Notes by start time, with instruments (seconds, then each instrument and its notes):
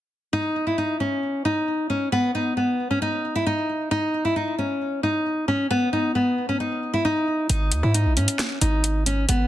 0.33 nylon-string guitar D#4
0.67 nylon-string guitar E4
0.78 nylon-string guitar D#4
1.00 nylon-string guitar C#4
1.45 nylon-string guitar D#4
1.90 nylon-string guitar C#4
2.12 nylon-string guitar B3
2.35 nylon-string guitar D#4
2.57 nylon-string guitar B3
2.91 nylon-string guitar C#4
3.02 nylon-string guitar D#4
3.35 nylon-string guitar E4
3.46 nylon-string guitar D#4
3.91 nylon-string guitar D#4
4.25 nylon-string guitar E4
4.36 nylon-string guitar D#4
4.58 nylon-string guitar C#4
5.03 nylon-string guitar D#4
5.48 nylon-string guitar C#4
5.71 nylon-string guitar B3
5.93 nylon-string guitar D#4
6.15 nylon-string guitar B3
6.49 nylon-string guitar C#4
6.60 nylon-string guitar D#4
6.94 nylon-string guitar E4
7.05 nylon-string guitar D#4
7.49 808-style bass G#1, nylon-string guitar D#4, closed hi-hat
7.72 808-style bass D#2, closed hi-hat
7.83 808-style bass G#2, nylon-string guitar E4
7.94 nylon-string guitar D#4, closed hi-hat
8.06 808-style bass A#1
8.17 808-style bass G#2, nylon-string guitar C#4, closed hi-hat
8.28 closed hi-hat
8.39 finger snap, snare, closed hi-hat
8.61 808-style bass G#1, nylon-string guitar D#4, closed hi-hat
8.84 closed hi-hat
9.06 nylon-string guitar C#4, closed hi-hat
9.29 808-style bass G#1, nylon-string guitar B3, closed hi-hat